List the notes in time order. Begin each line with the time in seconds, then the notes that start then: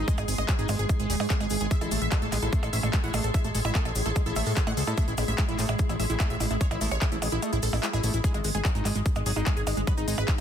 Already playing: G#3 G#4
0.08 G#3 D#5, kick, closed hi-hat, cabasa
0.18 G#1 G#4, closed hi-hat, percussion blips, cabasa
0.28 G#1 G#4, open hi-hat, cabasa
0.38 G#1 G#3 D#5, closed hi-hat, percussion blips, cabasa
0.49 F#3 G#4, kick, clap, closed hi-hat, cabasa
0.59 G#1 D#4 G#4, closed hi-hat, cabasa
0.68 G#1 G#3, open hi-hat, percussion blips, cabasa
0.79 G#1 G#4, closed hi-hat, cabasa
0.89 kick, closed hi-hat, percussion blips, cabasa
1.00 G#1 G#3 G#4, closed hi-hat, cabasa
1.10 D#1 F#3 G#4, open hi-hat, cabasa
1.20 G#2 G#4, open hi-hat, percussion blips, cabasa
1.30 A3 G#4, kick, clap, closed hi-hat, cabasa
1.40 G#1 G#3 G#4, closed hi-hat, percussion blips
1.50 G#1 G#4, open hi-hat, cabasa
1.60 G#1 G#3 G#4, closed hi-hat, cabasa
1.71 G#3 E5, kick, closed hi-hat, cabasa
1.81 A1 E4 A4, closed hi-hat, percussion blips, cabasa
1.91 A1 A3 A4, open hi-hat, cabasa
2.01 A1 B3 E5, closed hi-hat, cabasa
2.11 B3 A4, kick, clap, closed hi-hat, percussion blips, cabasa
2.22 A1 A3 A4, closed hi-hat
2.32 A1 G#3 B3, clap, open hi-hat, percussion blips, cabasa
2.42 A1 B3 E4 A4, closed hi-hat, cabasa
2.53 A3, kick, closed hi-hat, cabasa
2.63 A1 A4, closed hi-hat, percussion blips, cabasa
2.73 A1 C#4 E5, open hi-hat, cabasa
2.83 A1 A3 A4, closed hi-hat, percussion blips, cabasa
2.93 G#3 A4, kick, clap, closed hi-hat, cabasa
3.04 A1 E4 F#5, closed hi-hat
3.14 A1 A3 A4, open hi-hat, percussion blips, cabasa
3.24 A1 A4, closed hi-hat, cabasa
3.34 E5, kick, closed hi-hat, percussion blips, cabasa
3.44 A1 A3 A4, closed hi-hat, cabasa
3.55 A1 G#3 A4, open hi-hat, cabasa
3.65 A1 E4 E5, closed hi-hat, percussion blips, cabasa
3.75 A3 A4, kick, clap, closed hi-hat, cabasa
3.85 A1 A4, closed hi-hat, percussion blips
3.95 A1, open hi-hat, cabasa
4.06 A1 A3 A4, closed hi-hat, cabasa
4.16 G#3, kick, closed hi-hat, percussion blips, cabasa
4.26 A1 E4 A4, closed hi-hat, cabasa
4.36 A1 A3 E5, open hi-hat, percussion blips, cabasa
4.46 A2 A4, open hi-hat, cabasa
4.57 A4, kick, clap, cabasa
4.67 A2 A3 F#5, closed hi-hat, percussion blips
4.77 C#2 G#3 A4, open hi-hat, cabasa
4.87 A2 E4 A4, percussion blips, cabasa
4.97 A3 E5, kick, closed hi-hat, cabasa
5.08 A1 E4, closed hi-hat, cabasa
5.17 A1 E4, open hi-hat, percussion blips, cabasa
5.28 A1 A3 E5, closed hi-hat, cabasa
5.38 G#3 E4, kick, clap, closed hi-hat, percussion blips, cabasa
5.49 A1 E4, closed hi-hat
5.59 A1 A3, clap, open hi-hat, cabasa
5.69 A1 E4, closed hi-hat, percussion blips, cabasa
5.79 kick, closed hi-hat, cabasa
5.89 A1 A3 E4, closed hi-hat, percussion blips, cabasa
6.00 A1 G#3 E5, open hi-hat, cabasa
6.10 A1 E4, closed hi-hat, cabasa
6.20 A3 E4, kick, clap, closed hi-hat, percussion blips, cabasa
6.30 A1 E5, closed hi-hat
6.40 A1 E4, open hi-hat, percussion blips, cabasa
6.51 A1 A3 E4, closed hi-hat, cabasa
6.61 G#3 C#5, kick, closed hi-hat, cabasa
6.71 A1 E4, closed hi-hat, percussion blips, cabasa
6.81 A1 A3 E4, open hi-hat, cabasa
6.91 A1 C#5, percussion blips, cabasa
7.02 E4, kick, clap, closed hi-hat, cabasa
7.12 A1 A3 E4, closed hi-hat, cabasa
7.22 A1 G#3, open hi-hat, percussion blips, cabasa
7.31 A1 E4, closed hi-hat, cabasa
7.42 A3, closed hi-hat, percussion blips, cabasa
7.53 A1 E4, closed hi-hat, cabasa
7.63 A1 A4, open hi-hat, cabasa
7.73 A1 A3 E4, percussion blips, cabasa
7.83 G#3 E4, clap, closed hi-hat, cabasa
7.93 A1 E4 G#4, closed hi-hat, percussion blips, cabasa
8.04 A1 A3 E4, open hi-hat, cabasa
8.14 A1 E4, closed hi-hat, cabasa
8.24 G#3 D#4 G#4, kick, closed hi-hat, cabasa
8.34 G#1 G#3, closed hi-hat, percussion blips, cabasa
8.44 G#1 G#3, open hi-hat, cabasa
8.55 G#1 G#3 B3 G#4, closed hi-hat, cabasa
8.65 F#3 G#3 B3, kick, clap, closed hi-hat, percussion blips, cabasa
8.75 G#1 G#3 D#4, closed hi-hat, cabasa
8.80 G#4
8.85 G#1 G#3, clap, open hi-hat, percussion blips, cabasa
8.95 G#1 G#3, closed hi-hat, cabasa
9.06 G#3, kick, closed hi-hat, cabasa
9.15 G#1 G#3, closed hi-hat, percussion blips, cabasa
9.26 G#1 F#3 G#4, open hi-hat, cabasa
9.36 G#1 G#3 D#4, closed hi-hat, percussion blips, cabasa
9.46 G#3 D#5, kick, clap, closed hi-hat, cabasa
9.57 G#1 G#4, closed hi-hat, cabasa
9.67 G#1 G#3, open hi-hat, percussion blips, cabasa
9.77 G#1 G#3, closed hi-hat, cabasa
9.87 F#3 B4, kick, closed hi-hat, percussion blips, cabasa
9.97 G#1 D#4, closed hi-hat, cabasa
10.08 G#1 G#3 D#4, open hi-hat, cabasa
10.18 G#1 B4, closed hi-hat, percussion blips, cabasa
10.28 D#4, kick, clap, closed hi-hat, cabasa